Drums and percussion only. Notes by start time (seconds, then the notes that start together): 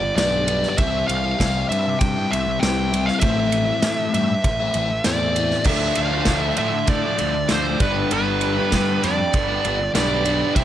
0.18 snare, ride
0.48 ride
0.63 snare
0.78 kick, ride
1.09 ride
1.40 kick, snare, ride
1.72 ride
2.01 kick, ride
2.33 ride
2.63 snare, ride
2.94 ride
3.08 snare
3.21 kick, ride
3.52 ride
3.83 snare, ride
4.14 ride
4.44 kick, ride
4.74 ride
5.04 snare, ride
5.36 ride
5.51 snare
5.64 kick, crash
5.95 ride
6.25 kick, snare, ride
6.57 ride
6.87 kick, ride
7.18 ride
7.49 snare, ride
7.80 kick, ride
8.11 ride
8.41 ride
8.72 kick, snare, ride
9.03 snare, ride
9.33 kick, ride
9.65 ride
9.95 snare, ride
10.25 ride
10.56 kick, ride